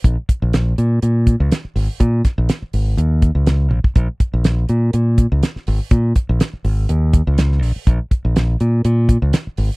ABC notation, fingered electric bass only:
X:1
M:4/4
L:1/16
Q:"Swing 16ths" 1/4=123
K:Bbm
V:1 name="Fingered electric bass" clef=bass
B,,, z2 B,,,3 B,,2 B,,3 D,, z2 A,,, z | B,,2 z B,,, z2 A,,,2 E,,3 D,,3 B,,, z | B,,, z2 B,,,3 B,,2 B,,3 D,, z2 A,,, z | B,,2 z B,,, z2 A,,,2 E,,3 D,,3 B,,, z |
B,,, z2 B,,,3 B,,2 B,,3 D,, z2 A,,, z |]